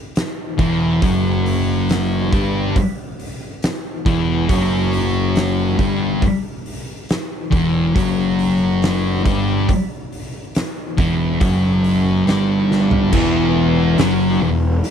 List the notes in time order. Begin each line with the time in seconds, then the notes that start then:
0.16 snare, open hi-hat
0.58 E1 E2 E3, kick, open hi-hat
1.02 F#1 F#2 F#3, kick, open hi-hat
1.46 open hi-hat
1.89 snare, open hi-hat
2.33 G1 G2 G3, kick, open hi-hat
2.76 kick, open hi-hat
3.19 open hi-hat
3.62 snare, open hi-hat
4.06 E1 E2 E3, kick, open hi-hat
4.49 F#1 F#2 F#3, kick, open hi-hat
4.93 open hi-hat
5.36 snare, open hi-hat
5.78 G1 G2 G3, kick, open hi-hat
6.22 kick, open hi-hat
6.66 open hi-hat
7.09 snare, open hi-hat
7.51 E1 E2 E3, kick, open hi-hat
7.95 F#1 F#2 F#3, kick, open hi-hat
8.39 open hi-hat
8.82 snare, open hi-hat
9.25 G1 G2 G3, kick, open hi-hat
9.69 kick, open hi-hat
10.12 open hi-hat
10.55 snare, open hi-hat
10.97 E1 E2 E3, kick, open hi-hat
11.41 F#1 F#2 F#3, kick, open hi-hat
11.84 open hi-hat
12.26 G1 G2 G3, snare, open hi-hat
12.71 snare
12.91 floor tom
13.13 E1 E2 E3, kick, crash
13.98 F#1 F#2 F#3, snare, open hi-hat
14.42 E1 E2
14.84 open hi-hat